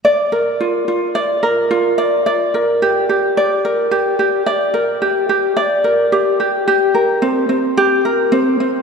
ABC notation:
X:1
M:4/4
L:1/8
Q:"Swing 16ths" 1/4=109
K:Gm
V:1 name="Ukulele"
d B F F d B F d | d B G G d B G G | d B G G d B G G | G B C C G B C C |]